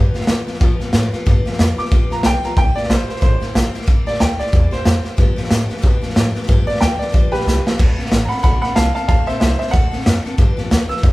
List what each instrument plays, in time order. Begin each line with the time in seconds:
Already playing: steel-string acoustic guitar G2 D3 F3 B3 F4 G4, upright bass G2
0.14 steel-string acoustic guitar F3 B3 F4 G4, muted upright bass stroke, snare
0.21 snare
0.27 upright bass D3, steel-string acoustic guitar F3 B3 F4 G4, snare, hi-hat pedal
0.47 steel-string acoustic guitar F3 B3 F4 G4, muted upright bass stroke, snare
0.54 snare
0.60 steel-string acoustic guitar G2 D3 F3 B3 F4 G4, upright bass B2, kick, snare
0.80 steel-string acoustic guitar F3 B3 F4 G4, muted upright bass stroke, snare
0.93 upright bass A2, steel-string acoustic guitar F3 B3 F4 G4, snare, hi-hat pedal
1.12 steel-string acoustic guitar F3 B3 F4 G4, muted upright bass stroke, snare
1.25 steel-string acoustic guitar G2 D3 F3 B3 F4 G4, upright bass G2, kick, snare
1.45 steel-string acoustic guitar F3 B3 F4 G4, muted upright bass stroke, snare
1.53 snare
1.59 upright bass F2, steel-string acoustic guitar F3 B3 F4 G4, snare, hi-hat pedal
1.78 steel-string acoustic guitar F3 B3 F4 G4, upright piano D6, muted upright bass stroke, snare
1.85 snare
1.91 upright bass D2, steel-string acoustic guitar G2 D3 F3 B3 F4 G4, kick, snare
2.10 steel-string acoustic guitar F3 B3 F4 G4, upright piano A#5, muted upright bass stroke, snare
2.23 upright bass B1, steel-string acoustic guitar F3 B3 F4 G4, upright piano G5, snare, hi-hat pedal
2.43 steel-string acoustic guitar F3 B3 F4 G4, upright piano A#5, muted upright bass stroke, snare
2.56 upright bass C2, steel-string acoustic guitar C3 G3 A#3 E4 G4, upright piano G5, kick, snare
2.75 steel-string acoustic guitar A#3 E4 G4, upright piano D5, muted upright bass stroke, snare
2.83 snare
2.89 upright bass A#1, steel-string acoustic guitar G3 A#3 E4 G4, upright piano C5, snare, hi-hat pedal
3.08 steel-string acoustic guitar A#3 E4 G4, upright piano C5, muted upright bass stroke, snare
3.16 snare
3.21 upright bass A1, steel-string acoustic guitar C3 G3 A#3 E4 G4, upright piano C5, kick, snare
3.40 steel-string acoustic guitar A#3 E4 G4, muted upright bass stroke, snare
3.54 upright bass A#1, steel-string acoustic guitar G3 A#3 E4 G4, snare, hi-hat pedal
3.74 steel-string acoustic guitar A#3 E4 G4, snare
3.81 snare
3.86 upright bass C2, steel-string acoustic guitar C3 G3 A#3 E4 G4, kick, snare
4.06 steel-string acoustic guitar A#3 E4 G4, upright piano D5, snare
4.14 snare
4.20 upright bass D2, steel-string acoustic guitar A#3 G4, upright piano G5, snare, hi-hat pedal
4.39 steel-string acoustic guitar A#3 E4 G4, upright piano D5, muted upright bass stroke, snare
4.46 snare
4.52 upright bass E2, steel-string acoustic guitar C3 G3 A#3 E4 G4, kick, snare
4.71 steel-string acoustic guitar A#3 E4 G4, upright piano C5, muted upright bass stroke, snare
4.85 upright bass F2, steel-string acoustic guitar G3, snare, hi-hat pedal
5.04 steel-string acoustic guitar A#3 E4 G4, muted upright bass stroke, snare
5.17 steel-string acoustic guitar G2 D3 F3 B3 D4 G4, upright bass G2, kick, snare
5.36 steel-string acoustic guitar F3 B3 D4 G4, muted upright bass stroke, snare
5.44 snare
5.49 upright bass A2, steel-string acoustic guitar F3 B3 D4 G4, snare, hi-hat pedal
5.69 steel-string acoustic guitar F3 B3 D4 G4, muted upright bass stroke, snare
5.77 snare
5.82 steel-string acoustic guitar G2 D3 F3 B3 D4 G4, upright bass B2, kick, snare
6.01 steel-string acoustic guitar F3 B3 D4 G4, muted upright bass stroke, snare
6.10 snare
6.14 upright bass A2, steel-string acoustic guitar F3 B3 D4 G4, snare, hi-hat pedal
6.35 steel-string acoustic guitar F3 B3 D4 G4, muted upright bass stroke, snare
6.43 snare
6.47 steel-string acoustic guitar G2 D3 F3 B3 D4 G4, upright bass G2, kick, snare
6.67 steel-string acoustic guitar F3 B3 D4 G4, upright piano D5, muted upright bass stroke, snare
6.75 snare
6.80 upright bass D2, steel-string acoustic guitar F3 B3 D4 G4, upright piano G5, snare, hi-hat pedal
6.99 steel-string acoustic guitar F3 B3 D4 G4, upright piano D5, muted upright bass stroke, snare
7.08 snare
7.12 upright bass B1, steel-string acoustic guitar G2 D3 F3 B3 D4 G4, kick, snare
7.32 steel-string acoustic guitar F3 B3 D4 G4, upright piano G4 B4, muted upright bass stroke, snare
7.41 snare
7.45 upright bass C2, steel-string acoustic guitar F3 B3 D4 G4, snare, hi-hat pedal
7.64 steel-string acoustic guitar F3 B3 D4 G4, snare
7.78 upright bass D2, steel-string acoustic guitar D3 F#3 C4 D4 A4, kick, snare, crash
7.96 steel-string acoustic guitar C4 D4 A4, muted upright bass stroke, snare
8.06 snare
8.10 upright bass A1, steel-string acoustic guitar F#3 C4 D4 A4, snare, hi-hat pedal
8.24 upright piano F#5 A#5
8.29 steel-string acoustic guitar C4 D4 A4, upright piano B5, muted upright bass stroke, snare
8.37 snare
8.43 upright bass B1, steel-string acoustic guitar D3 F#3 C4 D4 A4, upright piano F#5 B5, kick, snare
8.62 steel-string acoustic guitar C4 D4 A4, upright piano F#5 B5, muted upright bass stroke, snare
8.75 upright bass C2, steel-string acoustic guitar F#3 C4 D4 A4, upright piano F5 A5, snare, hi-hat pedal
8.95 steel-string acoustic guitar C4 D4 A4, upright piano F5 A5, snare
9.08 upright bass D2, steel-string acoustic guitar D3 F#3 C4 D4 A4, upright piano F5 A5, kick, snare
9.26 steel-string acoustic guitar C4 D4 A4, upright piano C5 E5, muted upright bass stroke, snare
9.39 upright bass C2, steel-string acoustic guitar F#3 A4, upright piano C5 E5, snare, hi-hat pedal
9.58 steel-string acoustic guitar C4 D4 A4, upright piano C5 E5, muted upright bass stroke, snare
9.67 upright piano F#5, snare
9.73 upright bass D2, steel-string acoustic guitar D3 F#3 C4 D4 A4, kick, snare
9.91 steel-string acoustic guitar C4 D4 A4, muted upright bass stroke, snare
10.00 snare
10.05 upright bass F#2, steel-string acoustic guitar F#3 C4 D4 A4, snare, hi-hat pedal
10.24 steel-string acoustic guitar C4 D4 A4, muted upright bass stroke, snare
10.38 steel-string acoustic guitar G2 D3 F3 B3 D4 G4, upright bass G2, kick, snare
10.57 steel-string acoustic guitar F3 B3 D4 G4, muted upright bass stroke, snare
10.70 upright bass D2, steel-string acoustic guitar F3 B3 D4 G4, snare, hi-hat pedal
10.89 steel-string acoustic guitar F3 B3 D4 G4, upright piano E6, muted upright bass stroke, snare
10.97 snare
11.03 upright bass F2, steel-string acoustic guitar G2 D3 F3 B3 D4 G4, kick, snare